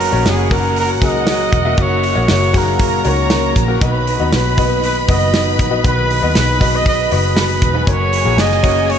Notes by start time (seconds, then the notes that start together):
Already playing: F#1 C#3 F#3 A#3 C#4 F#4 A#4 C#5 F#5
0.00 hi-hat pedal, open hi-hat
0.12 A#1 A#3 C#4 F#4 A#4 C#5
0.26 F#1 G#4, snare, hi-hat pedal, open hi-hat
0.50 F#3 A#3 C#4 F#4 A#4, kick, hi-hat pedal, open hi-hat
0.76 A#4, hi-hat pedal, open hi-hat
1.01 C#2 F#3 A#3 C#4 F#4 G#4 A#4, kick, hi-hat pedal, open hi-hat
1.06 D#5
1.27 F#3 C#4 F#4 A#4, snare, hi-hat pedal, open hi-hat
1.52 E1, kick, hi-hat pedal, open hi-hat
1.65 A#3 C#4 F#4 A#4 E5
1.77 F#1 F#3 A#3 C#4 F#4 A#4 E5, kick, hi-hat pedal, open hi-hat
1.81 C#5
2.03 hi-hat pedal, open hi-hat
2.15 A#1 A#3 C#4 F#4 A#4 C#5
2.28 F#1 C#5, snare, hi-hat pedal, open hi-hat
2.53 F#3 A#3 C#4 F#4 G#4 A#4, kick, hi-hat pedal, open hi-hat
2.57 A#4
2.79 A#4 A#5, kick, hi-hat pedal, open hi-hat
3.04 C#2 F#3 A#3 C#4 F#4 A#4 C#5, hi-hat pedal, open hi-hat
3.30 F#3 C#4 F#4 A#4, snare, hi-hat pedal, open hi-hat
3.56 A#1, kick, hi-hat pedal, open hi-hat
3.67 A#3 C#4 F#4 A#4
3.80 B1 B2 D#3 F#3 B3 D#4 F#4 B4 D#5 B5, kick, hi-hat pedal, open hi-hat
4.07 hi-hat pedal, open hi-hat
4.18 D#2 F#3 B3 D#4 F#4 B4 D#5
4.32 B1 B4, snare, hi-hat pedal, open hi-hat
4.57 F#3 B3 D#4 F#4 B4 D#5, kick, hi-hat pedal, open hi-hat
4.84 B4, hi-hat pedal, open hi-hat
5.07 F#1 F#3 B3 D#4 F#4 B4 D#5, kick, hi-hat pedal, open hi-hat
5.32 F#3 B3 D#4 B4, snare, hi-hat pedal, open hi-hat
5.59 A#1, kick, hi-hat pedal, open hi-hat
5.70 F#3 B3 D#4 F#4 B4 D#5
5.83 B1 B2 D#3 F#3 B3 D#4 F#4 G#4 B4, kick, hi-hat pedal, open hi-hat
6.10 hi-hat pedal, open hi-hat
6.21 D#2 F#3 B3 D#4 F#4 B4 D#5
6.35 B1 B4, snare, hi-hat pedal, open hi-hat
6.59 F#3 B3 D#4 F#4 B4 D#5, kick, hi-hat pedal, open hi-hat
6.76 D#5
6.86 D#5, kick, hi-hat pedal, open hi-hat
7.11 F#1 F#3 B3 D#4 F#4 B4 D#5, hi-hat pedal, open hi-hat
7.35 F#3 B3 D#4 B4, snare, hi-hat pedal, open hi-hat
7.39 B4
7.62 E1, kick, hi-hat pedal, open hi-hat
7.74 F#3 B3 D#4 F#4 B4
7.86 F#1 C#3 F#3 A#3 C#4 F#4 G#4 A#4 C#5 G#5, kick, hi-hat pedal, open hi-hat
7.92 C#5
8.12 hi-hat pedal, open hi-hat
8.24 A#1 A#3 C#4 F#4 G#4 A#4
8.37 F#1 D#5, snare, hi-hat pedal, open hi-hat
8.51 snare
8.62 F#3 A#3 C#4 F#4 A#4 C#5, kick, hi-hat pedal, open hi-hat
8.90 C#5, hi-hat pedal, open hi-hat